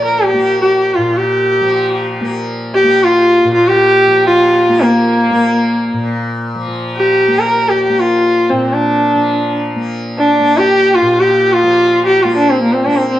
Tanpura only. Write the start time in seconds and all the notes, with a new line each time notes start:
Already playing: A#2 F3 A#3
0.34 A#3
0.98 A#2
1.61 F3
2.21 A#3
2.84 A#3
3.44 A#2
4.07 F3
4.69 A#3
5.31 A#3
5.93 A#2
6.55 F3
6.67 F3
7.28 A#3
7.90 A#3
8.52 A#2
9.14 F3
9.76 A#3
10.40 A#3
11.02 A#2
11.63 F3
12.25 A#3
12.87 A#3